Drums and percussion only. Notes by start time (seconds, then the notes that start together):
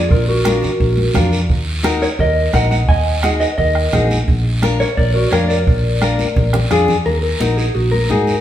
0.11 bombo low, high conga, long guiro
0.45 bombo rim, high conga, short guiro
0.63 low conga, short guiro
0.80 bombo low, high conga, long guiro
0.97 high conga
1.14 bombo low, bombo rim, high conga, low conga, short guiro
1.32 short guiro
1.49 bombo low, high conga, long guiro
1.84 bombo rim, high conga, short guiro
2.02 short guiro
2.19 bombo low, high conga, long guiro
2.54 bombo low, bombo rim, high conga, short guiro
2.71 high conga, short guiro
2.88 bombo low, high conga, long guiro
3.23 bombo rim, high conga, short guiro
3.41 short guiro
3.58 bombo low, high conga, long guiro
3.75 bombo rim
3.93 bombo rim, high conga, low conga, short guiro
4.11 high conga, short guiro
4.28 bombo low, high conga, long guiro
4.63 bombo rim, high conga, short guiro
4.80 short guiro
4.97 bombo low, high conga, long guiro
5.32 bombo rim, high conga, short guiro
5.50 short guiro
5.67 bombo low, high conga, long guiro
6.02 bombo rim, high conga, short guiro
6.19 high conga, short guiro
6.36 bombo low, low conga, long guiro
6.53 bombo rim, low conga
6.71 bombo rim, low conga, short guiro
6.88 low conga, short guiro
7.06 high conga, long guiro
7.40 high conga, short guiro
7.58 short guiro
7.75 high conga, long guiro
7.92 high conga
8.10 high conga, short guiro
8.27 high conga, short guiro